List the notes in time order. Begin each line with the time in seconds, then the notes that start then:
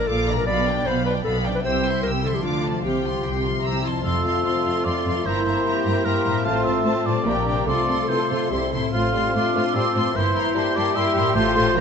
Already playing: A#2 A#3 D4 F4
0.07 A#1 A#2 F4 A4 F5 D6
0.28 B2 D4 D5 A#5
0.34 G3 A#4
0.38 F4
0.43 B1 G4 D5
0.47 B2 B3 F5 B5
0.67 D4 D5 G5
0.85 B1 B2 B3 C5 F5 B5
1.05 D4 B4 D5 G5
1.24 B1 B2 B3 A4 F5 B5
1.45 C3 D4 D5 G5
1.51 G3
1.55 E4 B4
1.60 C5
1.64 C2 C3 G4 C5 G5 E6
1.84 E4 E5 C6
2.03 C2 C3 G4 A#4 G5 E6
2.23 D3 E4 A4 E5 C6
2.29 F3
2.34 F4 G4
2.38 A4
2.43 D2 D3 D4 F4 F5 D6
2.64 C3 F4 D5 A5
2.70 F3
2.74 F4
2.79 C5
2.83 C2 C3 G4 F5 G5
3.04 F4 G5 C6
3.23 C2 C3 G4 G5 C6
3.44 C3 F4 C6
3.49 G3
3.54 E4
3.58 C5
3.64 C2 C3 G4 A#5 E6
3.83 F2 E4 A5 C6
3.90 A3
3.94 F4
3.99 C5
4.03 F1 F2 A3 C4 F4 A4 F5 C6
4.24 F2 C4 F5 C6
4.44 F2 C4 F5 C6
4.64 F2 C4 F5 C6
4.84 F2 C4 D5 F5 C6
5.05 F2 G2 C4 F5 C6
5.12 A#3
5.16 E4
5.21 C5 C6
5.25 G1 G2 A#3 C4 E4 C5 E5 A#5
5.45 G2 C4 E5 A#5
5.65 G2 C4 G4 E5 A#5
5.84 G2 C4 E5 A#5
6.04 G2 A#3 C4 E4 A#4 E5 A#5 C6
6.24 G2 A2 C4 E5 A#5
6.31 A3
6.36 C4
6.40 C5
6.44 A1 A2 A3 C4 F4 C5 F5 A5 C6
6.64 A2 C4 C5 E5 A5
6.84 A2 C4 F4 C5 A5
7.05 A2 A#2 C4 C5 D5 A5
7.12 G3
7.16 D4
7.21 A#4
7.25 A#1 A#2 G3 A#3 D4 G4 A#4 G5 A#5
7.46 A#2 C3 D4 A#4 G5
7.53 C4
7.58 F4
7.62 A4
7.66 C2 C3 F3 A3 F4 A4 D5 C6
7.88 C3 F4 A4 C6
8.08 C3 E3 F4 A4 C5 C6
8.30 C3 F3 F4 A4 C6
8.37 C4
8.42 E4
8.46 C5
8.50 C2 C3 G3 C4 E4 G4 C5 C6
8.72 A2 C3 A3 E4 C5 C6
8.79 C4
8.84 F4
8.88 F4 C5
8.93 A1 A2 F3 F4 A4 C5 F5 C6
9.13 A2 G3 F4 C5 C6
9.34 A2 A3 D4 F4 C5 C6 D6
9.55 A2 A3 F4 C5 C6
9.74 A2 G3 C4 F4 A4 C5 C6
9.94 G2 A2 F3 F4 C5 C6
10.02 A#3
10.07 E4
10.11 G2 E4 A#4 C5
10.15 G1 E3 A#3 E4 C5 C6
10.34 G2 E4 A#4 A#5 C6
10.54 G2 G3 E4 G4 A#4 A5 C6
10.75 G2 G3 E4 A#4 D5 C6
10.95 G2 E4 A#4 E5 G5 C6
11.15 G2 A2 E4 A#4 C6
11.22 A3
11.27 F4
11.31 A1 A2 F4 C5
11.36 A3 F4 A4 C5 C6
11.56 A2 A#2 A3 F4 A4 C6
11.63 C#4
11.67 F#4
11.71 A#3 F#4 A#4
11.76 A#1 A#2 A#3 F4 F#4 C#5 A#5